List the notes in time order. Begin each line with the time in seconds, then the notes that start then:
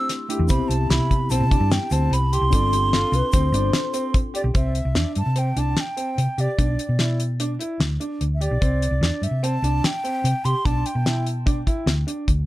Already playing: A3 D4 E4 G4
0.09 snare, closed hi-hat
0.28 A3 D4 E4 G4, closed hi-hat
0.39 E2
0.48 C2 B3 C4 E4 G4 B5, kick, closed hi-hat, shaker
0.68 C2 A5, closed hi-hat
0.90 C2 E4 B5, snare, closed hi-hat
0.99 C3
1.11 kick, closed hi-hat
1.30 C2 C4 A5, closed hi-hat, shaker
1.40 C3
1.51 D4, kick, closed hi-hat
1.60 G2
1.71 G5, snare, closed hi-hat, shaker
1.90 D2 C4 A5, closed hi-hat, shaker
2.11 C2 B5, closed hi-hat
2.33 G4 C6, closed hi-hat
2.41 C2
2.50 G1 C4 D4 F4 A4, kick, closed hi-hat, shaker
2.72 G4, closed hi-hat, shaker
2.93 F4 A4, snare, closed hi-hat
3.12 C2 B4, closed hi-hat, shaker
3.32 D2 C4 C5, kick, closed hi-hat, shaker
3.52 G1 D4, closed hi-hat, shaker
3.73 snare, closed hi-hat, shaker
3.94 C4, closed hi-hat, shaker
4.14 kick, closed hi-hat
4.34 G4 D5, closed hi-hat
4.44 B1
4.54 C2 C4 E5, kick, closed hi-hat
4.75 closed hi-hat
4.85 C2
4.95 E2 D4, snare, closed hi-hat
5.15 G2 A5, closed hi-hat
5.26 C3
5.36 C4 G5, closed hi-hat
5.56 C2 D4 A5, closed hi-hat
5.77 G5, snare, closed hi-hat
5.97 C4, closed hi-hat
6.18 C3, closed hi-hat
6.38 C3 G4 D5, closed hi-hat
6.58 B1 D4, kick, closed hi-hat
6.79 closed hi-hat
6.89 B2
6.99 E4, snare, closed hi-hat
7.20 closed hi-hat
7.40 D4, closed hi-hat
7.59 E4, closed hi-hat
7.80 D2, snare, closed hi-hat
8.00 D4, closed hi-hat
8.21 D2, closed hi-hat
8.34 E5
8.41 G4 D5, closed hi-hat
8.51 B1
8.61 C2 C4, kick, closed hi-hat
8.82 closed hi-hat
8.91 C2
9.01 E2 D4, snare, closed hi-hat
9.22 G2 E5, closed hi-hat
9.31 C3
9.43 C4 A5, closed hi-hat
9.62 C2 D4, closed hi-hat
9.84 G5, snare, closed hi-hat
10.04 C4, closed hi-hat
10.24 C3, closed hi-hat
10.45 C3 G4 C6, closed hi-hat
10.65 B1 D4 A5, kick, closed hi-hat
10.86 G5, closed hi-hat
10.95 B2
11.06 E4, snare, closed hi-hat
11.26 closed hi-hat
11.46 D4, kick, closed hi-hat
11.67 E4, kick, closed hi-hat
11.86 D2, snare, closed hi-hat
12.07 D4, closed hi-hat
12.28 D2, kick, closed hi-hat